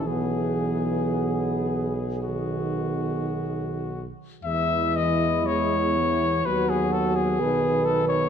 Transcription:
<<
  \new Staff \with { instrumentName = "Cornet" } { \time 4/4 \key e \major \tempo 4 = 57 gis'2 fis'4. r8 | e''8 dis''8 cis''4 b'16 gis'16 a'16 gis'8. a'16 cis''16 | }
  \new Staff \with { instrumentName = "French horn section" } { \time 4/4 \key e \major gis'2.~ gis'8 r8 | e'2 fis'4 b'4 | }
  \new Staff \with { instrumentName = "Trombone section" } { \time 4/4 \key e \major b2. r4 | gis4 b4 b2 | }
  \new Staff \with { instrumentName = "Trombone" } { \clef bass \time 4/4 \key e \major e4. r8 dis4. r8 | e4 gis8 e8 fis4 dis4 | }
  \new Staff \with { instrumentName = "Tuba" } { \clef bass \time 4/4 \key e \major b,,2.~ b,,8 r8 | e,2 dis,4 b,,4 | }
>>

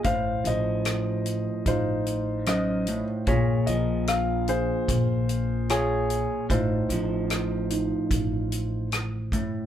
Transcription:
<<
  \new Staff \with { instrumentName = "Grand piano" } { \time 4/4 \key f \phrygian \tempo 4 = 74 << { f''8 ees''4. c''4 ees''8. r16 | des''8 ees''8 f''8 c''4. des''4 | c''2. r4 | } \\ { c''8 c''4. <ees' f'>4 c''4 | <f' aes'>4. <f' aes'>4. <f' aes'>4 | <ees' f'>2. r4 | } >> }
  \new Staff \with { instrumentName = "Felt piano" } { \time 4/4 \key f \phrygian r1 | r1 | r4. ees'4. r4 | }
  \new Staff \with { instrumentName = "Clean electric guitar" } { \clef bass \time 4/4 \key f \phrygian << { r1 | r2. aes'4 | r1 | } \\ { a,8 f2~ f8 ges,8 a,8 | bes,8 f2.~ f8 | a,8 f2. a,8 | } >> }
  \new Staff \with { instrumentName = "Upright bass" } { \clef bass \time 4/4 \key f \phrygian a,,8 a,,4. a,,2 | bes,,8 bes,,4. bes,,2 | a,,8 a,,4. a,,2 | }
  \new DrumStaff \with { instrumentName = "Drums" } \drummode { \time 4/4 <hh bd>8 hh8 <hh ss>8 hh8 <hh bd>8 hh8 <hh ss>8 hh8 | <hh bd>8 hh8 <hh ss>8 hh8 <hh bd>8 hh8 <hh ss>8 hh8 | <hh bd>8 hh8 <hh ss>8 hh8 <hh bd>8 hh8 <hh ss>8 <hh bd>8 | }
>>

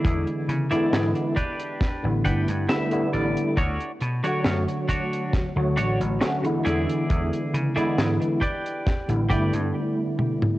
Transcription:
<<
  \new Staff \with { instrumentName = "Clean electric guitar" } { \time 4/4 \key d \major \tempo 4 = 68 << { r2 r8 fis''8 e''8 d''8 | r1 | r1 | } \\ { <e' gis' d''>8 r16 <e' gis' d''>16 r8 <d' g' b'>8. r16 <d' g' b'>16 r4 r16 | <d' fis' cis''>8 r16 <d' fis' cis''>16 r8 <d' fis' cis''>8 r8 <d' fis' cis''>16 r8. <e' gis' d''>8~ | <e' gis' d''>8 r16 <e' gis' d''>16 r8 <g' b' d''>8. r16 <g' b' d''>16 r4 r16 | } >> }
  \new Staff \with { instrumentName = "Tine electric piano" } { \time 4/4 \key d \major <d e gis b e'>8. <d e gis b e'>8. r8. <d g a b e'>8. <d g a b e'>16 <d g a b e'>8. | r8. <d fis a fis' cis''>4. <d fis a fis' cis''>8. <d fis a cis' fis'>16 <d e gis b e'>8.~ | <d e gis b e'>8. <d e gis b e'>8. r8. <d g a b e'>16 <d g a b e'>4. | }
  \new Staff \with { instrumentName = "Slap bass" } { \clef bass \time 4/4 \key d \major e,16 r16 cis16 r16 gis,16 r4 a,,16 g,,16 g,16 r8 a,,16 r16 | d,16 r16 b,16 r16 fis,16 r4 d,16 a,,16 a,,16 r8 e,16 r16 | e,16 r16 cis16 r16 gis,16 r4 a,,16 g,,16 g,16 r4 | }
  \new DrumStaff \with { instrumentName = "Drums" } \drummode { \time 4/4 <hh bd>16 hh16 hh16 hh16 <hh sn>16 hh16 <hh bd>16 hh16 <hh bd sn>8 <hh bd>16 hh16 <hh sn>16 hh16 hh16 hh16 | <hh bd>16 hh16 hh16 hh16 <hh sn>16 hh16 <hh bd>16 hh16 <hh bd sn>8 hh16 hh16 <hh sn>16 hh16 hh16 hh16 | <hh bd>16 hh16 hh16 hh16 <hh sn>16 hh16 <hh bd>16 hh16 <hh bd sn>16 hh16 <hh bd>16 hh16 r8 tommh16 toml16 | }
>>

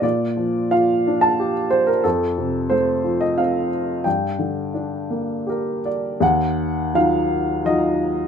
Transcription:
<<
  \new Staff \with { instrumentName = "Upright piano" } { \time 3/4 \key g \minor \tempo 4 = 88 d''4 f''8. a''8 r16 c''16 bes'16 | a'4 c''8. ees''16 f''4 | g''2 bes'8 d''8 | \key ees \lydian ges''4 f''4 ees''4 | }
  \new Staff \with { instrumentName = "Upright piano" } { \time 3/4 \key g \minor bes,8 f8 f'8 d'8 g'4 | f,8 c8 a8 f8 c'4 | g,8 d8 d'8 bes8 g'4 | \key ees \lydian ees,4 <ges ees' f'>4 <ges ees' f'>4 | }
>>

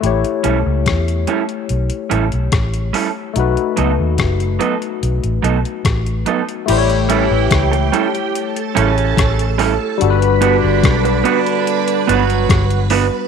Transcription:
<<
  \new Staff \with { instrumentName = "String machine" } { \time 4/4 \key a \mixolydian \tempo 4 = 72 r1 | r1 | <g' g''>2 <a' a''>2 | <b' b''>1 | }
  \new Staff \with { instrumentName = "Tine electric piano" } { \time 4/4 \key a \mixolydian <a e' g' cis''>1 | <a dis' fis' b'>1 | <a e' g' c'' cis''>1 | <g d' fis' a' b'>1 | }
  \new Staff \with { instrumentName = "Clean electric guitar" } { \time 4/4 \key a \mixolydian r8 <g cis' e' a'>8 r8 <g cis' e' a'>8 r8 <g cis' e' a'>8 r8 <g cis' e' a'>8 | r8 <fis b dis' a'>8 r8 <fis b dis' a'>8 r8 <fis b dis' a'>8 r8 <fis b dis' a'>8 | r8 <g cis' e' a'>8 r8 <g cis' e' a'>8 r8 <g cis' e' a'>8 r8 <g cis' e' a'>8 | r8 <b d' fis' b'>8 r8 <b d' fis' b'>8 r8 <b d' fis' b'>8 r8 <b d' fis' b'>8 | }
  \new Staff \with { instrumentName = "Horn section" } { \time 4/4 \key a \mixolydian r1 | r1 | <g g'>8 <e e'>4 r4 <cis cis'>4 r8 | r8 <d d'>4 <d d'>4 <fis fis'>4 r8 | }
  \new Staff \with { instrumentName = "Fingered electric bass" } { \clef bass \time 4/4 \key a \mixolydian a,,16 r16 b,,16 cis,16 e,8 r8 b,,16 r16 a,,16 b,,16 a,,8 r8 | b,,16 r16 cis,16 dis,16 fis,,8 r8 b,,16 a,,16 b,,16 r16 a,,8 r8 | a,,8. a,,16 cis,8 r4 a,,8 a,,8. r16 | g,,8. g,,16 b,,8 r4 g,,8 g,,8. r16 | }
  \new DrumStaff \with { instrumentName = "Drums" } \drummode { \time 4/4 hh16 hh16 hh8 <hh bd ss>16 hh16 hh16 hh16 hh16 hh16 hh16 hh16 <hh bd ss>16 hh16 hho8 | hh16 hh16 hh8 <hh bd ss>16 hh16 hh16 hh16 hh16 hh16 hh16 hh16 <hh bd ss>16 hh16 hh16 hh16 | <cymc hh>16 hh16 hh8 <hh bd ss>16 hh16 hh16 hh16 hh16 hh16 hh16 hh16 <hh bd ss>16 hh16 hho8 | hh16 hh16 hh8 <hh bd ss>16 hh16 hh16 hh16 hh16 hh16 hh16 hh16 <hh bd ss>16 hh16 hho8 | }
>>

